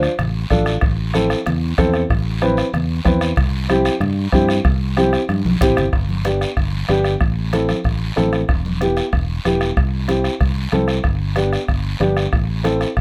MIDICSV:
0, 0, Header, 1, 5, 480
1, 0, Start_track
1, 0, Key_signature, 0, "major"
1, 0, Tempo, 319489
1, 1244, Time_signature, 4, 2, 24, 8
1, 19545, End_track
2, 0, Start_track
2, 0, Title_t, "Upright piano"
2, 0, Program_c, 0, 0
2, 760, Note_on_c, 0, 62, 78
2, 764, Note_on_c, 0, 65, 65
2, 770, Note_on_c, 0, 69, 77
2, 1097, Note_off_c, 0, 62, 0
2, 1100, Note_off_c, 0, 65, 0
2, 1103, Note_off_c, 0, 69, 0
2, 1715, Note_on_c, 0, 60, 72
2, 1715, Note_on_c, 0, 64, 64
2, 1723, Note_on_c, 0, 69, 84
2, 2054, Note_off_c, 0, 60, 0
2, 2055, Note_off_c, 0, 64, 0
2, 2058, Note_off_c, 0, 69, 0
2, 2673, Note_on_c, 0, 60, 85
2, 2676, Note_on_c, 0, 64, 72
2, 2682, Note_on_c, 0, 69, 90
2, 3013, Note_off_c, 0, 60, 0
2, 3014, Note_off_c, 0, 64, 0
2, 3017, Note_off_c, 0, 69, 0
2, 3626, Note_on_c, 0, 60, 82
2, 3631, Note_on_c, 0, 64, 69
2, 3636, Note_on_c, 0, 71, 87
2, 3969, Note_off_c, 0, 60, 0
2, 3971, Note_off_c, 0, 64, 0
2, 3973, Note_off_c, 0, 71, 0
2, 4572, Note_on_c, 0, 60, 74
2, 4576, Note_on_c, 0, 64, 77
2, 4586, Note_on_c, 0, 71, 78
2, 4921, Note_off_c, 0, 60, 0
2, 4923, Note_off_c, 0, 64, 0
2, 4927, Note_off_c, 0, 71, 0
2, 5539, Note_on_c, 0, 60, 76
2, 5544, Note_on_c, 0, 64, 79
2, 5556, Note_on_c, 0, 67, 84
2, 5883, Note_off_c, 0, 60, 0
2, 5885, Note_off_c, 0, 64, 0
2, 5892, Note_off_c, 0, 67, 0
2, 6495, Note_on_c, 0, 60, 80
2, 6501, Note_on_c, 0, 64, 82
2, 6511, Note_on_c, 0, 67, 83
2, 6840, Note_off_c, 0, 60, 0
2, 6843, Note_off_c, 0, 64, 0
2, 6848, Note_off_c, 0, 67, 0
2, 7460, Note_on_c, 0, 60, 76
2, 7467, Note_on_c, 0, 64, 67
2, 7472, Note_on_c, 0, 67, 85
2, 7802, Note_off_c, 0, 60, 0
2, 7806, Note_off_c, 0, 64, 0
2, 7808, Note_off_c, 0, 67, 0
2, 8424, Note_on_c, 0, 60, 82
2, 8433, Note_on_c, 0, 64, 67
2, 8439, Note_on_c, 0, 67, 87
2, 8764, Note_off_c, 0, 60, 0
2, 8768, Note_off_c, 0, 64, 0
2, 8771, Note_off_c, 0, 67, 0
2, 9387, Note_on_c, 0, 59, 63
2, 9396, Note_on_c, 0, 62, 56
2, 9397, Note_on_c, 0, 67, 70
2, 9725, Note_off_c, 0, 59, 0
2, 9730, Note_off_c, 0, 62, 0
2, 9731, Note_off_c, 0, 67, 0
2, 10343, Note_on_c, 0, 59, 70
2, 10347, Note_on_c, 0, 62, 58
2, 10357, Note_on_c, 0, 67, 87
2, 10684, Note_off_c, 0, 59, 0
2, 10686, Note_off_c, 0, 62, 0
2, 10691, Note_off_c, 0, 67, 0
2, 11310, Note_on_c, 0, 60, 60
2, 11314, Note_on_c, 0, 64, 63
2, 11320, Note_on_c, 0, 69, 77
2, 11648, Note_off_c, 0, 60, 0
2, 11650, Note_off_c, 0, 64, 0
2, 11653, Note_off_c, 0, 69, 0
2, 12260, Note_on_c, 0, 60, 70
2, 12262, Note_on_c, 0, 64, 63
2, 12272, Note_on_c, 0, 69, 80
2, 12604, Note_off_c, 0, 60, 0
2, 12604, Note_off_c, 0, 64, 0
2, 12609, Note_off_c, 0, 69, 0
2, 13229, Note_on_c, 0, 59, 68
2, 13236, Note_on_c, 0, 64, 57
2, 13246, Note_on_c, 0, 67, 77
2, 13569, Note_off_c, 0, 59, 0
2, 13572, Note_off_c, 0, 64, 0
2, 13577, Note_off_c, 0, 67, 0
2, 14195, Note_on_c, 0, 59, 69
2, 14198, Note_on_c, 0, 64, 61
2, 14207, Note_on_c, 0, 67, 78
2, 14532, Note_off_c, 0, 59, 0
2, 14534, Note_off_c, 0, 64, 0
2, 14539, Note_off_c, 0, 67, 0
2, 15141, Note_on_c, 0, 60, 62
2, 15143, Note_on_c, 0, 64, 62
2, 15147, Note_on_c, 0, 67, 76
2, 15486, Note_off_c, 0, 60, 0
2, 15487, Note_off_c, 0, 64, 0
2, 15489, Note_off_c, 0, 67, 0
2, 16103, Note_on_c, 0, 60, 70
2, 16116, Note_on_c, 0, 64, 61
2, 16118, Note_on_c, 0, 69, 78
2, 16448, Note_off_c, 0, 60, 0
2, 16455, Note_off_c, 0, 64, 0
2, 16456, Note_off_c, 0, 69, 0
2, 17063, Note_on_c, 0, 59, 65
2, 17066, Note_on_c, 0, 62, 63
2, 17068, Note_on_c, 0, 67, 67
2, 17409, Note_off_c, 0, 59, 0
2, 17411, Note_off_c, 0, 62, 0
2, 17412, Note_off_c, 0, 67, 0
2, 18024, Note_on_c, 0, 59, 67
2, 18034, Note_on_c, 0, 62, 60
2, 18034, Note_on_c, 0, 67, 80
2, 18371, Note_off_c, 0, 59, 0
2, 18376, Note_off_c, 0, 62, 0
2, 18376, Note_off_c, 0, 67, 0
2, 18982, Note_on_c, 0, 60, 70
2, 18987, Note_on_c, 0, 64, 62
2, 18995, Note_on_c, 0, 69, 80
2, 19331, Note_off_c, 0, 60, 0
2, 19334, Note_off_c, 0, 64, 0
2, 19338, Note_off_c, 0, 69, 0
2, 19545, End_track
3, 0, Start_track
3, 0, Title_t, "Fingered electric bass"
3, 0, Program_c, 1, 33
3, 285, Note_on_c, 1, 33, 86
3, 668, Note_off_c, 1, 33, 0
3, 759, Note_on_c, 1, 33, 86
3, 1144, Note_off_c, 1, 33, 0
3, 1236, Note_on_c, 1, 33, 82
3, 2006, Note_off_c, 1, 33, 0
3, 2210, Note_on_c, 1, 40, 95
3, 2590, Note_off_c, 1, 40, 0
3, 2677, Note_on_c, 1, 40, 87
3, 3062, Note_off_c, 1, 40, 0
3, 3154, Note_on_c, 1, 33, 96
3, 3924, Note_off_c, 1, 33, 0
3, 4110, Note_on_c, 1, 40, 83
3, 4497, Note_off_c, 1, 40, 0
3, 4590, Note_on_c, 1, 40, 91
3, 4976, Note_off_c, 1, 40, 0
3, 5063, Note_on_c, 1, 36, 85
3, 5836, Note_off_c, 1, 36, 0
3, 6015, Note_on_c, 1, 43, 90
3, 6406, Note_off_c, 1, 43, 0
3, 6499, Note_on_c, 1, 43, 93
3, 6889, Note_off_c, 1, 43, 0
3, 6981, Note_on_c, 1, 36, 91
3, 7753, Note_off_c, 1, 36, 0
3, 7945, Note_on_c, 1, 43, 81
3, 8140, Note_off_c, 1, 43, 0
3, 8188, Note_on_c, 1, 35, 87
3, 8406, Note_off_c, 1, 35, 0
3, 8428, Note_on_c, 1, 33, 88
3, 8646, Note_off_c, 1, 33, 0
3, 8666, Note_on_c, 1, 31, 84
3, 8884, Note_off_c, 1, 31, 0
3, 8905, Note_on_c, 1, 31, 78
3, 9676, Note_off_c, 1, 31, 0
3, 9868, Note_on_c, 1, 31, 79
3, 10254, Note_off_c, 1, 31, 0
3, 10356, Note_on_c, 1, 31, 95
3, 10739, Note_off_c, 1, 31, 0
3, 10832, Note_on_c, 1, 33, 90
3, 11601, Note_off_c, 1, 33, 0
3, 11788, Note_on_c, 1, 33, 82
3, 12175, Note_off_c, 1, 33, 0
3, 12286, Note_on_c, 1, 33, 94
3, 12666, Note_off_c, 1, 33, 0
3, 12752, Note_on_c, 1, 28, 84
3, 13522, Note_off_c, 1, 28, 0
3, 13714, Note_on_c, 1, 28, 89
3, 14099, Note_off_c, 1, 28, 0
3, 14204, Note_on_c, 1, 28, 84
3, 14585, Note_off_c, 1, 28, 0
3, 14675, Note_on_c, 1, 36, 84
3, 15445, Note_off_c, 1, 36, 0
3, 15634, Note_on_c, 1, 36, 74
3, 16020, Note_off_c, 1, 36, 0
3, 16119, Note_on_c, 1, 36, 100
3, 16504, Note_off_c, 1, 36, 0
3, 16589, Note_on_c, 1, 31, 89
3, 17364, Note_off_c, 1, 31, 0
3, 17554, Note_on_c, 1, 31, 79
3, 17942, Note_off_c, 1, 31, 0
3, 18032, Note_on_c, 1, 31, 98
3, 18422, Note_off_c, 1, 31, 0
3, 18519, Note_on_c, 1, 33, 81
3, 19292, Note_off_c, 1, 33, 0
3, 19482, Note_on_c, 1, 33, 84
3, 19545, Note_off_c, 1, 33, 0
3, 19545, End_track
4, 0, Start_track
4, 0, Title_t, "Two-headed folk drums"
4, 41, Note_on_c, 9, 37, 78
4, 192, Note_off_c, 9, 37, 0
4, 281, Note_on_c, 9, 37, 87
4, 432, Note_off_c, 9, 37, 0
4, 758, Note_on_c, 9, 37, 71
4, 762, Note_on_c, 9, 36, 70
4, 908, Note_off_c, 9, 37, 0
4, 913, Note_off_c, 9, 36, 0
4, 991, Note_on_c, 9, 37, 91
4, 1142, Note_off_c, 9, 37, 0
4, 1222, Note_on_c, 9, 37, 87
4, 1236, Note_on_c, 9, 36, 96
4, 1372, Note_off_c, 9, 37, 0
4, 1386, Note_off_c, 9, 36, 0
4, 1709, Note_on_c, 9, 37, 73
4, 1859, Note_off_c, 9, 37, 0
4, 1954, Note_on_c, 9, 37, 80
4, 2105, Note_off_c, 9, 37, 0
4, 2200, Note_on_c, 9, 37, 82
4, 2351, Note_off_c, 9, 37, 0
4, 2674, Note_on_c, 9, 36, 74
4, 2674, Note_on_c, 9, 37, 81
4, 2824, Note_off_c, 9, 36, 0
4, 2825, Note_off_c, 9, 37, 0
4, 2908, Note_on_c, 9, 37, 86
4, 3058, Note_off_c, 9, 37, 0
4, 3155, Note_on_c, 9, 36, 88
4, 3163, Note_on_c, 9, 37, 87
4, 3305, Note_off_c, 9, 36, 0
4, 3313, Note_off_c, 9, 37, 0
4, 3636, Note_on_c, 9, 37, 85
4, 3787, Note_off_c, 9, 37, 0
4, 3876, Note_on_c, 9, 37, 76
4, 4026, Note_off_c, 9, 37, 0
4, 4116, Note_on_c, 9, 37, 77
4, 4266, Note_off_c, 9, 37, 0
4, 4589, Note_on_c, 9, 36, 79
4, 4590, Note_on_c, 9, 37, 75
4, 4739, Note_off_c, 9, 36, 0
4, 4740, Note_off_c, 9, 37, 0
4, 4825, Note_on_c, 9, 37, 88
4, 4975, Note_off_c, 9, 37, 0
4, 5065, Note_on_c, 9, 36, 84
4, 5067, Note_on_c, 9, 37, 92
4, 5215, Note_off_c, 9, 36, 0
4, 5218, Note_off_c, 9, 37, 0
4, 5553, Note_on_c, 9, 37, 85
4, 5703, Note_off_c, 9, 37, 0
4, 5791, Note_on_c, 9, 37, 79
4, 5942, Note_off_c, 9, 37, 0
4, 6023, Note_on_c, 9, 37, 78
4, 6173, Note_off_c, 9, 37, 0
4, 6497, Note_on_c, 9, 37, 76
4, 6500, Note_on_c, 9, 36, 75
4, 6647, Note_off_c, 9, 37, 0
4, 6651, Note_off_c, 9, 36, 0
4, 6739, Note_on_c, 9, 37, 81
4, 6890, Note_off_c, 9, 37, 0
4, 6983, Note_on_c, 9, 37, 91
4, 6984, Note_on_c, 9, 36, 89
4, 7133, Note_off_c, 9, 37, 0
4, 7134, Note_off_c, 9, 36, 0
4, 7468, Note_on_c, 9, 37, 81
4, 7618, Note_off_c, 9, 37, 0
4, 7705, Note_on_c, 9, 37, 78
4, 7855, Note_off_c, 9, 37, 0
4, 7948, Note_on_c, 9, 37, 78
4, 8098, Note_off_c, 9, 37, 0
4, 8428, Note_on_c, 9, 36, 81
4, 8428, Note_on_c, 9, 37, 75
4, 8578, Note_off_c, 9, 36, 0
4, 8578, Note_off_c, 9, 37, 0
4, 8669, Note_on_c, 9, 37, 92
4, 8819, Note_off_c, 9, 37, 0
4, 8907, Note_on_c, 9, 37, 76
4, 8908, Note_on_c, 9, 36, 82
4, 9057, Note_off_c, 9, 37, 0
4, 9058, Note_off_c, 9, 36, 0
4, 9392, Note_on_c, 9, 37, 68
4, 9543, Note_off_c, 9, 37, 0
4, 9634, Note_on_c, 9, 37, 66
4, 9785, Note_off_c, 9, 37, 0
4, 9868, Note_on_c, 9, 37, 70
4, 9869, Note_on_c, 9, 36, 72
4, 10018, Note_off_c, 9, 37, 0
4, 10020, Note_off_c, 9, 36, 0
4, 10346, Note_on_c, 9, 37, 73
4, 10496, Note_off_c, 9, 37, 0
4, 10584, Note_on_c, 9, 37, 75
4, 10734, Note_off_c, 9, 37, 0
4, 10826, Note_on_c, 9, 37, 76
4, 10828, Note_on_c, 9, 36, 84
4, 10976, Note_off_c, 9, 37, 0
4, 10979, Note_off_c, 9, 36, 0
4, 11313, Note_on_c, 9, 37, 70
4, 11463, Note_off_c, 9, 37, 0
4, 11551, Note_on_c, 9, 37, 67
4, 11701, Note_off_c, 9, 37, 0
4, 11791, Note_on_c, 9, 36, 68
4, 11795, Note_on_c, 9, 37, 73
4, 11941, Note_off_c, 9, 36, 0
4, 11946, Note_off_c, 9, 37, 0
4, 12276, Note_on_c, 9, 37, 72
4, 12426, Note_off_c, 9, 37, 0
4, 12511, Note_on_c, 9, 37, 79
4, 12661, Note_off_c, 9, 37, 0
4, 12752, Note_on_c, 9, 37, 84
4, 12755, Note_on_c, 9, 36, 88
4, 12903, Note_off_c, 9, 37, 0
4, 12905, Note_off_c, 9, 36, 0
4, 13234, Note_on_c, 9, 37, 69
4, 13384, Note_off_c, 9, 37, 0
4, 13476, Note_on_c, 9, 37, 66
4, 13626, Note_off_c, 9, 37, 0
4, 13715, Note_on_c, 9, 37, 81
4, 13719, Note_on_c, 9, 36, 75
4, 13865, Note_off_c, 9, 37, 0
4, 13869, Note_off_c, 9, 36, 0
4, 14202, Note_on_c, 9, 37, 71
4, 14352, Note_off_c, 9, 37, 0
4, 14435, Note_on_c, 9, 37, 79
4, 14586, Note_off_c, 9, 37, 0
4, 14678, Note_on_c, 9, 36, 78
4, 14681, Note_on_c, 9, 37, 82
4, 14828, Note_off_c, 9, 36, 0
4, 14831, Note_off_c, 9, 37, 0
4, 15152, Note_on_c, 9, 37, 70
4, 15302, Note_off_c, 9, 37, 0
4, 15389, Note_on_c, 9, 37, 67
4, 15539, Note_off_c, 9, 37, 0
4, 15633, Note_on_c, 9, 37, 71
4, 15634, Note_on_c, 9, 36, 80
4, 15783, Note_off_c, 9, 37, 0
4, 15784, Note_off_c, 9, 36, 0
4, 16108, Note_on_c, 9, 37, 70
4, 16259, Note_off_c, 9, 37, 0
4, 16342, Note_on_c, 9, 37, 73
4, 16492, Note_off_c, 9, 37, 0
4, 16583, Note_on_c, 9, 37, 83
4, 16590, Note_on_c, 9, 36, 80
4, 16734, Note_off_c, 9, 37, 0
4, 16741, Note_off_c, 9, 36, 0
4, 17063, Note_on_c, 9, 37, 74
4, 17214, Note_off_c, 9, 37, 0
4, 17317, Note_on_c, 9, 37, 70
4, 17467, Note_off_c, 9, 37, 0
4, 17554, Note_on_c, 9, 36, 72
4, 17555, Note_on_c, 9, 37, 77
4, 17705, Note_off_c, 9, 36, 0
4, 17705, Note_off_c, 9, 37, 0
4, 18042, Note_on_c, 9, 37, 66
4, 18192, Note_off_c, 9, 37, 0
4, 18278, Note_on_c, 9, 37, 78
4, 18428, Note_off_c, 9, 37, 0
4, 18519, Note_on_c, 9, 37, 81
4, 18520, Note_on_c, 9, 36, 80
4, 18669, Note_off_c, 9, 37, 0
4, 18670, Note_off_c, 9, 36, 0
4, 19001, Note_on_c, 9, 37, 70
4, 19151, Note_off_c, 9, 37, 0
4, 19242, Note_on_c, 9, 37, 68
4, 19392, Note_off_c, 9, 37, 0
4, 19483, Note_on_c, 9, 37, 75
4, 19484, Note_on_c, 9, 36, 68
4, 19545, Note_off_c, 9, 36, 0
4, 19545, Note_off_c, 9, 37, 0
4, 19545, End_track
5, 0, Start_track
5, 0, Title_t, "Drums"
5, 45, Note_on_c, 9, 73, 77
5, 195, Note_off_c, 9, 73, 0
5, 282, Note_on_c, 9, 74, 68
5, 291, Note_on_c, 9, 64, 82
5, 433, Note_off_c, 9, 74, 0
5, 441, Note_off_c, 9, 64, 0
5, 765, Note_on_c, 9, 63, 81
5, 767, Note_on_c, 9, 73, 73
5, 915, Note_off_c, 9, 63, 0
5, 917, Note_off_c, 9, 73, 0
5, 1001, Note_on_c, 9, 73, 62
5, 1152, Note_off_c, 9, 73, 0
5, 1230, Note_on_c, 9, 74, 61
5, 1381, Note_off_c, 9, 74, 0
5, 1719, Note_on_c, 9, 73, 78
5, 1724, Note_on_c, 9, 63, 82
5, 1870, Note_off_c, 9, 73, 0
5, 1875, Note_off_c, 9, 63, 0
5, 1963, Note_on_c, 9, 73, 77
5, 2114, Note_off_c, 9, 73, 0
5, 2191, Note_on_c, 9, 74, 73
5, 2205, Note_on_c, 9, 64, 88
5, 2341, Note_off_c, 9, 74, 0
5, 2355, Note_off_c, 9, 64, 0
5, 2675, Note_on_c, 9, 73, 68
5, 2684, Note_on_c, 9, 63, 94
5, 2826, Note_off_c, 9, 73, 0
5, 2834, Note_off_c, 9, 63, 0
5, 2912, Note_on_c, 9, 73, 56
5, 3062, Note_off_c, 9, 73, 0
5, 3160, Note_on_c, 9, 74, 70
5, 3310, Note_off_c, 9, 74, 0
5, 3625, Note_on_c, 9, 73, 72
5, 3647, Note_on_c, 9, 63, 81
5, 3775, Note_off_c, 9, 73, 0
5, 3797, Note_off_c, 9, 63, 0
5, 3866, Note_on_c, 9, 73, 74
5, 4016, Note_off_c, 9, 73, 0
5, 4110, Note_on_c, 9, 74, 70
5, 4126, Note_on_c, 9, 64, 81
5, 4260, Note_off_c, 9, 74, 0
5, 4276, Note_off_c, 9, 64, 0
5, 4588, Note_on_c, 9, 63, 92
5, 4592, Note_on_c, 9, 73, 75
5, 4738, Note_off_c, 9, 63, 0
5, 4742, Note_off_c, 9, 73, 0
5, 4824, Note_on_c, 9, 73, 69
5, 4974, Note_off_c, 9, 73, 0
5, 5049, Note_on_c, 9, 74, 70
5, 5069, Note_on_c, 9, 64, 79
5, 5200, Note_off_c, 9, 74, 0
5, 5219, Note_off_c, 9, 64, 0
5, 5542, Note_on_c, 9, 73, 72
5, 5545, Note_on_c, 9, 63, 85
5, 5693, Note_off_c, 9, 73, 0
5, 5696, Note_off_c, 9, 63, 0
5, 5785, Note_on_c, 9, 73, 72
5, 5935, Note_off_c, 9, 73, 0
5, 6022, Note_on_c, 9, 74, 64
5, 6031, Note_on_c, 9, 64, 80
5, 6173, Note_off_c, 9, 74, 0
5, 6181, Note_off_c, 9, 64, 0
5, 6510, Note_on_c, 9, 63, 92
5, 6518, Note_on_c, 9, 73, 66
5, 6660, Note_off_c, 9, 63, 0
5, 6668, Note_off_c, 9, 73, 0
5, 6758, Note_on_c, 9, 73, 71
5, 6909, Note_off_c, 9, 73, 0
5, 6996, Note_on_c, 9, 74, 70
5, 7146, Note_off_c, 9, 74, 0
5, 7472, Note_on_c, 9, 73, 75
5, 7480, Note_on_c, 9, 63, 83
5, 7622, Note_off_c, 9, 73, 0
5, 7631, Note_off_c, 9, 63, 0
5, 7719, Note_on_c, 9, 73, 79
5, 7869, Note_off_c, 9, 73, 0
5, 7957, Note_on_c, 9, 74, 73
5, 7964, Note_on_c, 9, 63, 76
5, 8107, Note_off_c, 9, 74, 0
5, 8114, Note_off_c, 9, 63, 0
5, 8201, Note_on_c, 9, 63, 107
5, 8351, Note_off_c, 9, 63, 0
5, 8439, Note_on_c, 9, 64, 89
5, 8442, Note_on_c, 9, 73, 65
5, 8589, Note_off_c, 9, 64, 0
5, 8593, Note_off_c, 9, 73, 0
5, 8671, Note_on_c, 9, 73, 65
5, 8683, Note_on_c, 9, 64, 78
5, 8821, Note_off_c, 9, 73, 0
5, 8833, Note_off_c, 9, 64, 0
5, 8912, Note_on_c, 9, 63, 33
5, 8914, Note_on_c, 9, 74, 61
5, 9062, Note_off_c, 9, 63, 0
5, 9064, Note_off_c, 9, 74, 0
5, 9148, Note_on_c, 9, 63, 67
5, 9298, Note_off_c, 9, 63, 0
5, 9387, Note_on_c, 9, 63, 85
5, 9391, Note_on_c, 9, 73, 68
5, 9537, Note_off_c, 9, 63, 0
5, 9541, Note_off_c, 9, 73, 0
5, 9640, Note_on_c, 9, 73, 68
5, 9790, Note_off_c, 9, 73, 0
5, 9875, Note_on_c, 9, 74, 68
5, 10026, Note_off_c, 9, 74, 0
5, 10108, Note_on_c, 9, 63, 34
5, 10258, Note_off_c, 9, 63, 0
5, 10343, Note_on_c, 9, 63, 74
5, 10356, Note_on_c, 9, 73, 62
5, 10494, Note_off_c, 9, 63, 0
5, 10506, Note_off_c, 9, 73, 0
5, 10596, Note_on_c, 9, 73, 60
5, 10746, Note_off_c, 9, 73, 0
5, 10834, Note_on_c, 9, 63, 34
5, 10845, Note_on_c, 9, 74, 59
5, 10984, Note_off_c, 9, 63, 0
5, 10995, Note_off_c, 9, 74, 0
5, 11316, Note_on_c, 9, 73, 64
5, 11317, Note_on_c, 9, 63, 90
5, 11466, Note_off_c, 9, 73, 0
5, 11468, Note_off_c, 9, 63, 0
5, 11549, Note_on_c, 9, 73, 68
5, 11555, Note_on_c, 9, 63, 66
5, 11699, Note_off_c, 9, 73, 0
5, 11705, Note_off_c, 9, 63, 0
5, 11785, Note_on_c, 9, 74, 65
5, 11936, Note_off_c, 9, 74, 0
5, 12039, Note_on_c, 9, 63, 34
5, 12190, Note_off_c, 9, 63, 0
5, 12270, Note_on_c, 9, 73, 66
5, 12283, Note_on_c, 9, 63, 77
5, 12420, Note_off_c, 9, 73, 0
5, 12433, Note_off_c, 9, 63, 0
5, 12513, Note_on_c, 9, 73, 59
5, 12663, Note_off_c, 9, 73, 0
5, 12766, Note_on_c, 9, 74, 60
5, 12772, Note_on_c, 9, 63, 33
5, 12916, Note_off_c, 9, 74, 0
5, 12922, Note_off_c, 9, 63, 0
5, 13007, Note_on_c, 9, 63, 70
5, 13158, Note_off_c, 9, 63, 0
5, 13244, Note_on_c, 9, 63, 83
5, 13245, Note_on_c, 9, 73, 68
5, 13394, Note_off_c, 9, 63, 0
5, 13395, Note_off_c, 9, 73, 0
5, 13472, Note_on_c, 9, 73, 60
5, 13622, Note_off_c, 9, 73, 0
5, 13712, Note_on_c, 9, 74, 68
5, 13862, Note_off_c, 9, 74, 0
5, 13964, Note_on_c, 9, 63, 35
5, 14114, Note_off_c, 9, 63, 0
5, 14202, Note_on_c, 9, 73, 66
5, 14207, Note_on_c, 9, 63, 84
5, 14352, Note_off_c, 9, 73, 0
5, 14357, Note_off_c, 9, 63, 0
5, 14439, Note_on_c, 9, 73, 58
5, 14589, Note_off_c, 9, 73, 0
5, 14676, Note_on_c, 9, 74, 57
5, 14687, Note_on_c, 9, 63, 34
5, 14826, Note_off_c, 9, 74, 0
5, 14837, Note_off_c, 9, 63, 0
5, 15157, Note_on_c, 9, 63, 86
5, 15159, Note_on_c, 9, 73, 68
5, 15307, Note_off_c, 9, 63, 0
5, 15309, Note_off_c, 9, 73, 0
5, 15395, Note_on_c, 9, 73, 62
5, 15545, Note_off_c, 9, 73, 0
5, 15640, Note_on_c, 9, 74, 71
5, 15791, Note_off_c, 9, 74, 0
5, 15869, Note_on_c, 9, 63, 34
5, 16019, Note_off_c, 9, 63, 0
5, 16113, Note_on_c, 9, 63, 74
5, 16117, Note_on_c, 9, 73, 63
5, 16263, Note_off_c, 9, 63, 0
5, 16267, Note_off_c, 9, 73, 0
5, 16354, Note_on_c, 9, 73, 63
5, 16504, Note_off_c, 9, 73, 0
5, 16594, Note_on_c, 9, 63, 35
5, 16600, Note_on_c, 9, 74, 57
5, 16744, Note_off_c, 9, 63, 0
5, 16750, Note_off_c, 9, 74, 0
5, 17071, Note_on_c, 9, 63, 84
5, 17080, Note_on_c, 9, 73, 73
5, 17222, Note_off_c, 9, 63, 0
5, 17230, Note_off_c, 9, 73, 0
5, 17329, Note_on_c, 9, 73, 73
5, 17479, Note_off_c, 9, 73, 0
5, 17569, Note_on_c, 9, 74, 65
5, 17719, Note_off_c, 9, 74, 0
5, 17799, Note_on_c, 9, 63, 33
5, 17949, Note_off_c, 9, 63, 0
5, 18047, Note_on_c, 9, 63, 83
5, 18049, Note_on_c, 9, 73, 60
5, 18197, Note_off_c, 9, 63, 0
5, 18199, Note_off_c, 9, 73, 0
5, 18287, Note_on_c, 9, 73, 58
5, 18437, Note_off_c, 9, 73, 0
5, 18528, Note_on_c, 9, 63, 33
5, 18532, Note_on_c, 9, 74, 63
5, 18679, Note_off_c, 9, 63, 0
5, 18682, Note_off_c, 9, 74, 0
5, 19000, Note_on_c, 9, 73, 72
5, 19006, Note_on_c, 9, 63, 83
5, 19150, Note_off_c, 9, 73, 0
5, 19156, Note_off_c, 9, 63, 0
5, 19244, Note_on_c, 9, 73, 66
5, 19394, Note_off_c, 9, 73, 0
5, 19483, Note_on_c, 9, 74, 57
5, 19545, Note_off_c, 9, 74, 0
5, 19545, End_track
0, 0, End_of_file